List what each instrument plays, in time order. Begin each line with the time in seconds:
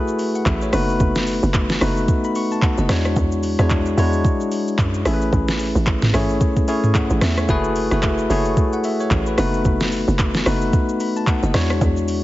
Already playing: tine electric piano A3 E4 F#4 G#4 B4
0.08 shaker
0.19 open hi-hat, shaker
0.35 tine electric piano F#5, shaker
0.46 log drum bass A1, tine electric piano E5, kick, clap, shaker
0.61 tine electric piano C#5, shaker
0.73 log drum bass F#1, tine electric piano A3 B3 D#4 F#4 B4, cross-stick, open hi-hat, shaker
0.89 shaker
1.00 log drum bass F#1, kick, shaker
1.15 snare, shaker
1.27 open hi-hat, shaker
1.43 log drum bass F#1, shaker
1.54 kick, clap, shaker
1.69 snare, shaker
1.81 log drum bass F#1, tine electric piano A3 B3 D#4 F#4 B4, cross-stick, open hi-hat, shaker
1.97 shaker
2.08 kick, shaker
2.24 tine electric piano B5, shaker
2.35 tine electric piano C#6, open hi-hat, shaker
2.51 tine electric piano A5, shaker
2.62 tine electric piano F#5, kick, clap, shaker
2.78 log drum bass F#1, tine electric piano D#5, shaker
2.89 log drum bass E2, tine electric piano G#3 D4 E4 F#4 C#5, cross-stick, snare, open hi-hat, shaker
3.05 cross-stick, shaker
3.16 log drum bass E2, kick, shaker
3.32 shaker
3.43 open hi-hat, shaker
3.59 log drum bass E2, tine electric piano G#3 D4 E4 F#4 C#5, cross-stick, shaker
3.70 kick, clap, shaker
3.86 shaker
3.98 log drum bass E2, tine electric piano G#3 D4 E4 F#4 C#5, open hi-hat, shaker
4.13 shaker
4.25 kick, shaker
4.40 shaker
4.52 open hi-hat, shaker
4.68 shaker
4.78 log drum bass F#2, kick, clap, shaker
4.94 shaker
5.05 log drum bass A1, tine electric piano A3 C#4 E4 G#4 A4, cross-stick, open hi-hat, shaker
5.14 tine electric piano B4
5.22 shaker
5.33 log drum bass A1, kick, shaker
5.48 snare, shaker
5.60 open hi-hat, shaker
5.75 log drum bass A1, shaker
5.86 kick, clap, shaker
6.02 snare, mid tom, shaker
6.14 log drum bass A1, tine electric piano A3 C#4 E4 G#4 C#5, cross-stick, open hi-hat, shaker
6.29 shaker
6.41 kick, shaker
6.57 kick, shaker
6.68 tine electric piano A3 C#4 E4 G#4 C#5, open hi-hat, shaker
6.84 mid tom, shaker
6.95 tine electric piano F#5, kick, clap, shaker
7.10 log drum bass A1, shaker
7.21 log drum bass E2, tine electric piano E5, cross-stick, snare, open hi-hat, shaker
7.38 tine electric piano C#5, cross-stick, shaker
7.49 log drum bass F#1, tine electric piano A3 E4 F#4 G#4 B4, kick, shaker
7.64 shaker
7.76 open hi-hat, shaker
7.91 log drum bass F#1, tine electric piano A3 E4 F#4 G#4 B4, cross-stick, shaker
8.02 kick, clap, shaker
8.18 shaker
8.30 log drum bass F#1, tine electric piano A3 E4 F#4 G#4 C#5, open hi-hat, shaker
8.45 shaker
8.57 kick, shaker
8.73 tine electric piano F#5, shaker
8.84 tine electric piano E5, open hi-hat, shaker
9.00 tine electric piano C#5, shaker
9.11 log drum bass A1, kick, clap, shaker
9.26 tine electric piano B4, shaker
9.38 log drum bass F#1, tine electric piano A3 B3 D#4 F#4 B4, cross-stick, open hi-hat, shaker
9.54 shaker
9.65 log drum bass F#1, kick, shaker
9.80 snare, shaker
9.92 open hi-hat, shaker
10.08 log drum bass F#1, shaker
10.19 kick, clap, shaker
10.34 snare, shaker
10.46 log drum bass F#1, tine electric piano A3 B3 D#4 F#4 B4, cross-stick, open hi-hat, shaker
10.61 shaker
10.73 kick, shaker
10.89 shaker
11.00 tine electric piano B5, open hi-hat, shaker
11.16 tine electric piano A5, shaker
11.27 tine electric piano F#5, kick, clap, shaker
11.43 log drum bass F#1, tine electric piano D#5, shaker
11.54 log drum bass E2, tine electric piano G#3 D4 E4 F#4 C#5, cross-stick, snare, open hi-hat, shaker
11.70 cross-stick, shaker
11.81 log drum bass E2, kick, shaker
11.97 shaker
12.08 open hi-hat, shaker